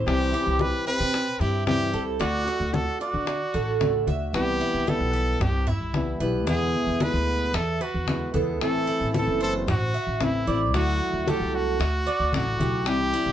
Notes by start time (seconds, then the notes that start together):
Already playing: C5
0.06 C2 C3 E3 G3 C4 E4 G4, high bongo, high conga
0.33 E3 G3 C4 E4 G4, high conga
0.46 C2
0.59 B4, high bongo, high conga
0.86 G3 C4 E4 B4, high conga
1.00 C3
1.13 muted steel-string acoustic guitar stroke, high bongo, high conga
1.40 G2 G3 C4 E4 G4, high conga
1.66 C3 E3 G3 C4 E4 G4, high bongo, low bongo, high conga
1.93 C2 G3 C4 E4 A4, high conga
2.19 D2 D3 A3 D4 F#4, high bongo, high conga
2.46 A3 D4 F#4, high conga
2.60 D2
2.74 A4, high bongo, high conga
2.99 A3 D4 F#4 D5, high bongo
3.14 D3
3.26 muted steel-string acoustic guitar stroke, high bongo, high conga
3.53 A1 A3 D4 F#4 A4, high bongo, high conga
3.79 D3 A3 D4 F#4, high bongo, low bongo, high conga
4.07 D2 A3 D4 F#4 E5, high bongo, high conga
4.33 C2 C3 E3 G3 B3 E4 G4, high bongo, high conga
4.61 E4, high conga
4.74 C2
4.87 E3 G3 B3 E4 G4 A4, high bongo, high conga
5.00 B1
5.13 B4, high conga
5.40 C2 G4, muted steel-string acoustic guitar stroke, high bongo, high conga, low conga
5.67 E4 E5, high conga, low conga
5.80 C2
5.93 E3 G3 B3 E4, high bongo, low bongo, high conga
6.20 B1 E3 G3 B3 E4 B4, high conga
6.47 E2 B2 D3 G#3 B3 E4 G#4, high bongo
6.74 high conga
6.87 E2
7.00 B2 D3 G#3 B3 E4 G#4 B4, high bongo, high conga
7.13 D2
7.28 high bongo
7.54 E2 A4 E5, muted steel-string acoustic guitar stroke, high bongo, high conga
7.81 F#4 B4, high bongo, high conga
7.94 E2
8.07 D3 G#3 B3 E4, high bongo, low bongo, high conga
8.34 E2 D3 G#3 B3 E4 A4, high bongo, high conga
8.60 A1 E3 A3 C4 E4 A4, high bongo, high conga
8.87 E4, high conga
9.00 A1
9.13 E3 A3 C4 E4 A4, high bongo, high conga
9.17 A4
9.27 F#1
9.41 A4 C5, high conga
9.67 A1 F#4, muted steel-string acoustic guitar stroke, high bongo, high conga, low conga
9.94 E5, high conga
10.07 A1
10.20 E3 A3 C4 E4, high bongo, low bongo, high conga
10.46 A1 A3 C4 E4 D5, high conga
10.74 D2 D3 F#3 A3 E4 F#4, high bongo, high conga
11.01 high conga
11.13 D2
11.26 D3 F#3 A3 E4 F#4 G4 A4, high bongo, high conga
11.40 C2
11.54 F#4, high bongo
11.79 D2 E5, muted steel-string acoustic guitar stroke, high bongo, high conga
12.07 D5, high bongo, high conga
12.20 D2
12.32 A1 F#3 A3 E4 F#4, high bongo, low bongo, high conga
12.58 B1 F#3 A3 E4 F#4 G4, high bongo, high conga
12.85 C2 C3 E3 G3 D4 E4 G4, high bongo, high conga
13.14 E4, high conga
13.26 C2